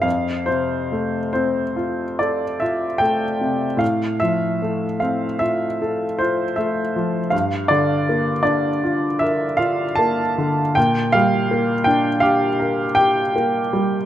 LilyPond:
<<
  \new Staff \with { instrumentName = "Upright piano" } { \time 9/8 \key f \major \tempo 4. = 52 f''8 c''4 c''4 d''8 e''8 g''4 | f''8 e''4 f''8 e''4 c''8 e''4 | f''8 d''4 d''4 e''8 f''8 a''4 | g''8 f''4 g''8 f''4 g''8 r4 | }
  \new Staff \with { instrumentName = "Upright piano" } { \time 9/8 \key f \major f,8 c8 a8 c'8 f'8 a'8 f'8 a8 c8 | a,8 f8 a8 c'8 f'8 a'8 f'8 a8 f8 | g,8 d8 bes8 d'8 f'8 bes'8 f'8 bes8 d8 | bes,8 g8 bes8 d'8 g'8 bes'8 g'8 bes8 g8 | }
>>